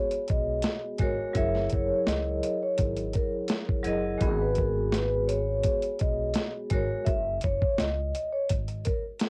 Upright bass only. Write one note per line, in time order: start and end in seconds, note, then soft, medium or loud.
0.30 0.62 B1 medium
1.00 1.17 G#1 medium
1.35 1.68 F#1 loud
1.73 1.90 F#1 medium
2.07 2.40 C#2 loud
2.79 3.11 G#1 medium
3.86 4.18 F#1 medium
4.21 5.60 G#1 loud
6.01 6.33 B1 medium
6.71 6.89 G#1 medium
7.07 7.39 F#1 loud
7.44 7.61 F#1 medium
7.79 8.11 C#2 loud
8.51 8.83 G#1 medium